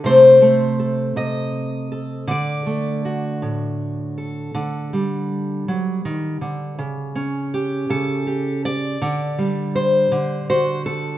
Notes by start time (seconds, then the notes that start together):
0.04 C3 A3 C4 A4 C5
0.42 A3
0.80 A4
1.16 C3 D#5
1.92 A4
2.27 D3 D5
2.66 A3
3.05 F#4
3.42 A2
4.18 A4
4.55 D3
4.93 G3
5.68 F#3
6.05 D#3
6.41 D3
6.79 C#3
7.15 C#4
7.54 G4
7.90 C#3 A4
8.27 G4
8.65 D5
9.02 D3
9.38 G3
9.76 C5
10.12 D3
10.50 F#4 C5
10.86 A4